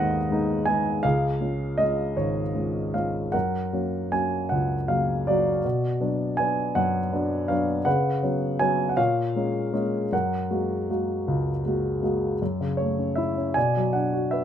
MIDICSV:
0, 0, Header, 1, 2, 480
1, 0, Start_track
1, 0, Key_signature, 6, "major"
1, 0, Tempo, 741656
1, 674, Time_signature, 6, 3, 24, 8
1, 1161, Tempo, 770218
1, 3561, Tempo, 739827
1, 5481, Tempo, 763359
1, 9152, End_track
2, 0, Start_track
2, 0, Title_t, "Grand piano"
2, 0, Program_c, 0, 0
2, 0, Control_c, 0, 64, 127
2, 0, Note_on_c, 0, 39, 53
2, 0, Note_on_c, 0, 44, 56
2, 0, Note_on_c, 0, 56, 41
2, 0, Note_on_c, 0, 59, 38
2, 0, Note_on_c, 0, 63, 40
2, 0, Note_on_c, 0, 71, 64
2, 0, Note_on_c, 0, 75, 79
2, 0, Note_on_c, 0, 77, 75
2, 0, Note_on_c, 0, 78, 81
2, 105, Note_off_c, 0, 56, 0
2, 107, Note_off_c, 0, 59, 0
2, 110, Note_off_c, 0, 63, 0
2, 197, Note_on_c, 0, 56, 43
2, 202, Note_on_c, 0, 59, 33
2, 207, Note_on_c, 0, 63, 49
2, 405, Note_off_c, 0, 78, 0
2, 424, Note_on_c, 0, 80, 72
2, 430, Note_off_c, 0, 56, 0
2, 432, Note_off_c, 0, 59, 0
2, 435, Note_off_c, 0, 63, 0
2, 440, Note_on_c, 0, 56, 42
2, 442, Note_on_c, 0, 59, 34
2, 444, Note_on_c, 0, 63, 46
2, 630, Note_off_c, 0, 56, 0
2, 630, Note_off_c, 0, 59, 0
2, 632, Note_off_c, 0, 63, 0
2, 652, Note_off_c, 0, 44, 0
2, 656, Note_off_c, 0, 39, 0
2, 665, Note_off_c, 0, 77, 0
2, 665, Note_on_c, 0, 77, 79
2, 675, Note_on_c, 0, 68, 58
2, 676, Note_off_c, 0, 80, 0
2, 676, Note_on_c, 0, 37, 53
2, 682, Control_c, 0, 64, 0
2, 683, Note_off_c, 0, 75, 0
2, 684, Note_off_c, 0, 71, 0
2, 809, Control_c, 0, 64, 127
2, 911, Note_on_c, 0, 56, 36
2, 916, Note_on_c, 0, 61, 29
2, 916, Note_on_c, 0, 65, 31
2, 1145, Note_off_c, 0, 56, 0
2, 1148, Note_off_c, 0, 61, 0
2, 1149, Note_on_c, 0, 75, 67
2, 1152, Note_off_c, 0, 65, 0
2, 1155, Note_on_c, 0, 56, 35
2, 1158, Note_on_c, 0, 61, 32
2, 1161, Note_on_c, 0, 65, 39
2, 1171, Note_off_c, 0, 77, 0
2, 1375, Note_off_c, 0, 68, 0
2, 1392, Note_on_c, 0, 32, 47
2, 1394, Note_on_c, 0, 73, 56
2, 1401, Note_off_c, 0, 75, 0
2, 1540, Note_off_c, 0, 56, 0
2, 1542, Note_off_c, 0, 61, 0
2, 1544, Note_off_c, 0, 65, 0
2, 1632, Note_on_c, 0, 56, 31
2, 1633, Note_on_c, 0, 65, 34
2, 1635, Note_on_c, 0, 61, 32
2, 1870, Note_off_c, 0, 65, 0
2, 1871, Note_off_c, 0, 56, 0
2, 1872, Note_off_c, 0, 61, 0
2, 1875, Note_on_c, 0, 77, 56
2, 1880, Note_on_c, 0, 56, 36
2, 1880, Note_on_c, 0, 65, 38
2, 1881, Note_on_c, 0, 61, 34
2, 1893, Note_off_c, 0, 73, 0
2, 2075, Note_off_c, 0, 56, 0
2, 2075, Note_off_c, 0, 65, 0
2, 2076, Note_off_c, 0, 61, 0
2, 2099, Note_off_c, 0, 32, 0
2, 2101, Note_off_c, 0, 37, 0
2, 2112, Note_on_c, 0, 78, 67
2, 2121, Note_on_c, 0, 70, 46
2, 2125, Note_on_c, 0, 42, 45
2, 2129, Note_off_c, 0, 77, 0
2, 2132, Control_c, 0, 64, 0
2, 2242, Control_c, 0, 64, 127
2, 2369, Note_on_c, 0, 54, 35
2, 2369, Note_on_c, 0, 58, 30
2, 2373, Note_on_c, 0, 61, 34
2, 2602, Note_off_c, 0, 54, 0
2, 2602, Note_off_c, 0, 58, 0
2, 2605, Note_off_c, 0, 61, 0
2, 2610, Note_on_c, 0, 80, 61
2, 2611, Note_on_c, 0, 54, 36
2, 2612, Note_on_c, 0, 58, 29
2, 2615, Note_on_c, 0, 61, 37
2, 2619, Note_off_c, 0, 78, 0
2, 2824, Note_off_c, 0, 70, 0
2, 2843, Note_on_c, 0, 78, 63
2, 2857, Note_on_c, 0, 37, 50
2, 2858, Note_off_c, 0, 80, 0
2, 2994, Note_off_c, 0, 54, 0
2, 2995, Note_off_c, 0, 58, 0
2, 2996, Note_off_c, 0, 61, 0
2, 3084, Note_on_c, 0, 54, 39
2, 3086, Note_on_c, 0, 77, 64
2, 3088, Note_on_c, 0, 58, 36
2, 3090, Note_on_c, 0, 49, 39
2, 3093, Note_off_c, 0, 78, 0
2, 3324, Note_off_c, 0, 54, 0
2, 3326, Note_off_c, 0, 58, 0
2, 3328, Note_on_c, 0, 74, 65
2, 3331, Note_off_c, 0, 77, 0
2, 3334, Note_on_c, 0, 54, 44
2, 3335, Note_on_c, 0, 58, 35
2, 3336, Note_on_c, 0, 66, 49
2, 3467, Note_off_c, 0, 49, 0
2, 3518, Note_off_c, 0, 54, 0
2, 3519, Note_off_c, 0, 58, 0
2, 3536, Note_off_c, 0, 42, 0
2, 3543, Note_off_c, 0, 37, 0
2, 3563, Note_on_c, 0, 47, 45
2, 3568, Control_c, 0, 64, 0
2, 3675, Control_c, 0, 64, 127
2, 3794, Note_on_c, 0, 54, 35
2, 3796, Note_on_c, 0, 59, 29
2, 3799, Note_on_c, 0, 62, 42
2, 4024, Note_off_c, 0, 66, 0
2, 4032, Note_on_c, 0, 80, 69
2, 4034, Note_off_c, 0, 54, 0
2, 4036, Note_off_c, 0, 59, 0
2, 4042, Note_off_c, 0, 62, 0
2, 4044, Note_on_c, 0, 54, 39
2, 4046, Note_on_c, 0, 59, 36
2, 4052, Note_on_c, 0, 62, 38
2, 4068, Note_off_c, 0, 74, 0
2, 4279, Note_on_c, 0, 78, 76
2, 4284, Note_on_c, 0, 42, 55
2, 4286, Note_off_c, 0, 80, 0
2, 4428, Note_off_c, 0, 54, 0
2, 4430, Note_off_c, 0, 59, 0
2, 4433, Note_off_c, 0, 62, 0
2, 4523, Note_on_c, 0, 54, 43
2, 4526, Note_on_c, 0, 62, 50
2, 4527, Note_on_c, 0, 59, 37
2, 4750, Note_off_c, 0, 54, 0
2, 4753, Note_on_c, 0, 77, 67
2, 4754, Note_off_c, 0, 59, 0
2, 4759, Note_off_c, 0, 62, 0
2, 4760, Note_on_c, 0, 54, 47
2, 4763, Note_on_c, 0, 59, 40
2, 4769, Note_on_c, 0, 62, 46
2, 4775, Note_off_c, 0, 78, 0
2, 4951, Note_off_c, 0, 54, 0
2, 4953, Note_off_c, 0, 59, 0
2, 4956, Note_off_c, 0, 62, 0
2, 4976, Note_off_c, 0, 47, 0
2, 4979, Note_off_c, 0, 42, 0
2, 4979, Note_off_c, 0, 77, 0
2, 4991, Note_on_c, 0, 78, 77
2, 4999, Note_on_c, 0, 49, 53
2, 5000, Note_on_c, 0, 71, 59
2, 5008, Control_c, 0, 64, 0
2, 5138, Control_c, 0, 64, 127
2, 5238, Note_on_c, 0, 54, 40
2, 5240, Note_on_c, 0, 59, 31
2, 5241, Note_on_c, 0, 61, 42
2, 5468, Note_off_c, 0, 54, 0
2, 5473, Note_off_c, 0, 59, 0
2, 5474, Note_off_c, 0, 61, 0
2, 5475, Note_on_c, 0, 80, 74
2, 5478, Note_on_c, 0, 54, 48
2, 5483, Note_on_c, 0, 59, 38
2, 5483, Note_on_c, 0, 61, 46
2, 5490, Note_off_c, 0, 78, 0
2, 5662, Note_on_c, 0, 78, 54
2, 5669, Note_off_c, 0, 54, 0
2, 5672, Note_off_c, 0, 59, 0
2, 5672, Note_off_c, 0, 61, 0
2, 5678, Note_off_c, 0, 80, 0
2, 5693, Note_off_c, 0, 71, 0
2, 5697, Note_off_c, 0, 49, 0
2, 5710, Note_on_c, 0, 77, 75
2, 5712, Note_off_c, 0, 78, 0
2, 5712, Note_on_c, 0, 46, 58
2, 5713, Note_on_c, 0, 73, 53
2, 5727, Control_c, 0, 64, 0
2, 5851, Control_c, 0, 64, 127
2, 5957, Note_on_c, 0, 56, 39
2, 5961, Note_on_c, 0, 58, 42
2, 5964, Note_on_c, 0, 61, 43
2, 6181, Note_off_c, 0, 56, 0
2, 6184, Note_off_c, 0, 61, 0
2, 6187, Note_off_c, 0, 58, 0
2, 6190, Note_on_c, 0, 56, 47
2, 6193, Note_on_c, 0, 61, 47
2, 6197, Note_on_c, 0, 58, 39
2, 6385, Note_off_c, 0, 56, 0
2, 6387, Note_off_c, 0, 61, 0
2, 6389, Note_off_c, 0, 58, 0
2, 6408, Note_off_c, 0, 77, 0
2, 6409, Note_off_c, 0, 73, 0
2, 6413, Note_off_c, 0, 46, 0
2, 6435, Note_on_c, 0, 42, 49
2, 6440, Note_on_c, 0, 78, 67
2, 6445, Control_c, 0, 64, 0
2, 6445, Note_on_c, 0, 70, 49
2, 6550, Control_c, 0, 64, 127
2, 6676, Note_on_c, 0, 56, 36
2, 6678, Note_on_c, 0, 58, 31
2, 6680, Note_on_c, 0, 66, 38
2, 6915, Note_off_c, 0, 56, 0
2, 6917, Note_off_c, 0, 58, 0
2, 6920, Note_off_c, 0, 66, 0
2, 6925, Note_on_c, 0, 56, 33
2, 6926, Note_on_c, 0, 58, 33
2, 6929, Note_on_c, 0, 66, 38
2, 7162, Note_on_c, 0, 37, 52
2, 7303, Note_off_c, 0, 56, 0
2, 7304, Note_off_c, 0, 58, 0
2, 7306, Note_off_c, 0, 66, 0
2, 7370, Note_off_c, 0, 78, 0
2, 7372, Note_off_c, 0, 70, 0
2, 7399, Note_on_c, 0, 56, 36
2, 7404, Note_on_c, 0, 58, 32
2, 7407, Note_on_c, 0, 66, 37
2, 7623, Note_off_c, 0, 56, 0
2, 7625, Note_off_c, 0, 58, 0
2, 7628, Note_off_c, 0, 66, 0
2, 7632, Note_on_c, 0, 56, 36
2, 7634, Note_on_c, 0, 58, 31
2, 7638, Note_on_c, 0, 66, 38
2, 7824, Note_off_c, 0, 56, 0
2, 7825, Note_off_c, 0, 58, 0
2, 7827, Note_off_c, 0, 66, 0
2, 7845, Note_off_c, 0, 42, 0
2, 7854, Note_off_c, 0, 37, 0
2, 7879, Control_c, 0, 64, 0
2, 7880, Note_on_c, 0, 42, 46
2, 7993, Control_c, 0, 64, 127
2, 7998, Note_on_c, 0, 49, 41
2, 8101, Note_on_c, 0, 73, 58
2, 8123, Note_on_c, 0, 57, 35
2, 8237, Note_on_c, 0, 61, 39
2, 8342, Note_on_c, 0, 76, 61
2, 8355, Note_off_c, 0, 73, 0
2, 8358, Note_on_c, 0, 64, 41
2, 8472, Note_off_c, 0, 61, 0
2, 8482, Note_on_c, 0, 61, 39
2, 8578, Note_off_c, 0, 42, 0
2, 8581, Note_off_c, 0, 49, 0
2, 8586, Note_on_c, 0, 80, 68
2, 8587, Note_off_c, 0, 57, 0
2, 8591, Note_off_c, 0, 64, 0
2, 8596, Note_off_c, 0, 61, 0
2, 8598, Note_off_c, 0, 76, 0
2, 8603, Note_on_c, 0, 74, 50
2, 8604, Note_on_c, 0, 47, 45
2, 8605, Control_c, 0, 64, 0
2, 8701, Control_c, 0, 64, 127
2, 8727, Note_on_c, 0, 54, 43
2, 8829, Note_on_c, 0, 78, 55
2, 8837, Note_on_c, 0, 62, 43
2, 8841, Note_off_c, 0, 80, 0
2, 8958, Note_on_c, 0, 66, 42
2, 9068, Note_on_c, 0, 76, 62
2, 9081, Note_on_c, 0, 71, 42
2, 9082, Note_off_c, 0, 78, 0
2, 9152, Note_off_c, 0, 47, 0
2, 9152, Note_off_c, 0, 54, 0
2, 9152, Note_off_c, 0, 62, 0
2, 9152, Note_off_c, 0, 66, 0
2, 9152, Note_off_c, 0, 71, 0
2, 9152, Note_off_c, 0, 74, 0
2, 9152, Note_off_c, 0, 76, 0
2, 9152, End_track
0, 0, End_of_file